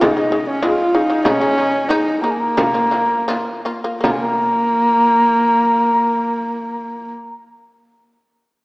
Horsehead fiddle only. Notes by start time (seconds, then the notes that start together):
0.05 D#4
0.49 C#4
0.63 F4
0.94 D#4
1.28 C#4
1.88 D#4
2.21 A#3
4.02 A#3